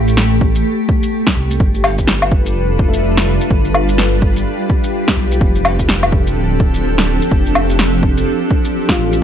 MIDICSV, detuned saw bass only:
0, 0, Header, 1, 2, 480
1, 0, Start_track
1, 0, Tempo, 476190
1, 1614, Time_signature, 4, 2, 24, 8
1, 9307, End_track
2, 0, Start_track
2, 0, Title_t, "Detuned saw bass"
2, 0, Program_c, 0, 39
2, 0, Note_on_c, 0, 33, 100
2, 643, Note_off_c, 0, 33, 0
2, 1376, Note_on_c, 0, 36, 85
2, 1600, Note_off_c, 0, 36, 0
2, 1613, Note_on_c, 0, 31, 101
2, 2562, Note_off_c, 0, 31, 0
2, 2571, Note_on_c, 0, 29, 94
2, 3419, Note_off_c, 0, 29, 0
2, 3535, Note_on_c, 0, 31, 100
2, 4482, Note_off_c, 0, 31, 0
2, 5212, Note_on_c, 0, 35, 80
2, 5438, Note_off_c, 0, 35, 0
2, 5454, Note_on_c, 0, 29, 99
2, 6402, Note_off_c, 0, 29, 0
2, 6413, Note_on_c, 0, 26, 93
2, 7261, Note_off_c, 0, 26, 0
2, 7375, Note_on_c, 0, 29, 99
2, 8322, Note_off_c, 0, 29, 0
2, 9053, Note_on_c, 0, 33, 83
2, 9278, Note_off_c, 0, 33, 0
2, 9307, End_track
0, 0, End_of_file